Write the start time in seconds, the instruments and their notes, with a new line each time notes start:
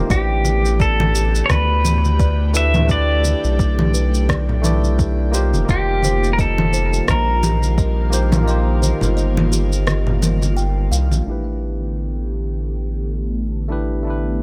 Already playing: tine electric piano A#3 D#4 F4 G4 C5 D#5
0.06 analog synth bass A1, tine electric piano A3 D4 E4
0.10 analog synth pad D3 A3 B3 G4, pedal steel guitar G4, tine electric piano G4 B4, kalimba D5, kick, shaker
0.45 kalimba B4, high conga, shaker
0.65 shaker
0.80 pedal steel guitar A4, kalimba D5, kick, shaker
1.00 high conga, low conga
1.15 kalimba G4, shaker
1.35 shaker
1.46 pedal steel guitar C#5, kalimba D5, cross-stick
1.50 analog synth bass D2, pedal steel guitar B4, kick, high conga, shaker
1.84 kalimba B4, low conga, shaker
2.05 high conga, shaker
2.20 kalimba D5, kick, shaker
2.53 tine electric piano A3 D4 E4 G4 B4, kalimba B4, pedal steel guitar E5, shaker
2.74 muted conga, high conga, low conga, shaker
2.85 tine electric piano A3 D4 E4, kalimba D5, shaker
2.89 tine electric piano G4 B4, pedal steel guitar D5, kick
3.24 kalimba G4, high conga, shaker
3.44 analog synth bass B1, shaker
3.59 kalimba D5, kick, shaker
3.79 high conga, low conga
3.94 kalimba B4, shaker
4.14 shaker
4.29 kalimba D5, kick, cross-stick, high conga, shaker
4.49 low conga
4.62 tine electric piano A3 D4 E4 G4, kalimba B4, low conga, shaker
4.66 tine electric piano D5
4.84 high conga, shaker
4.99 kalimba D5, kick, shaker
5.31 analog synth pad D#3 G3 A#3 F4, tine electric piano A#3 D#4 F4 G4 C5, kalimba G4, shaker
5.54 analog synth bass F1, high conga, shaker
5.65 tine electric piano A#3 D#4 F4
5.69 analog synth bass F1, tine electric piano G4 C5, pedal steel guitar G4, kalimba D#5, kick, shaker
6.03 kalimba C5, high conga, shaker
6.24 shaker
6.33 pedal steel guitar A#4
6.39 pedal steel guitar A4, kalimba D#5, kick, shaker
6.58 high conga, low conga
6.73 kalimba C5, shaker
6.93 shaker
7.08 analog synth bass A#1, pedal steel guitar A#4, kalimba D#5, kick, cross-stick, high conga, shaker
7.43 kalimba G4, low conga, shaker
7.62 high conga, shaker
7.78 kalimba D#5, kick, shaker
8.10 tine electric piano A#3 D#4 F4 G4 C5, kalimba C5, shaker
8.32 muted conga, high conga, low conga, shaker
8.43 tine electric piano A#3 D#4 F4
8.48 tine electric piano G4 C5, kalimba D#5, shaker
8.82 kalimba C5, high conga, shaker
9.01 analog synth bass G1, low conga, shaker
9.17 kalimba D#5, shaker
9.37 high conga, low conga
9.52 kalimba G4, shaker
9.72 shaker
9.87 kalimba D#5, cross-stick, high conga, shaker
10.07 low conga
10.22 kalimba A#4, low conga, shaker
10.42 muted conga, high conga, shaker
10.57 kalimba G5, shaker
10.92 analog synth bass C2, kalimba F5, shaker
11.11 analog synth bass A#1, high conga, shaker
11.24 analog synth bass A1, analog synth pad D3 A3 B3 G4, tine electric piano A3 D4 E4
11.29 tine electric piano G4 B4
13.68 tine electric piano A3 D4 E4 G4 B4
14.03 tine electric piano A3 D4 E4, analog synth pad F#5
14.09 tine electric piano G4 B4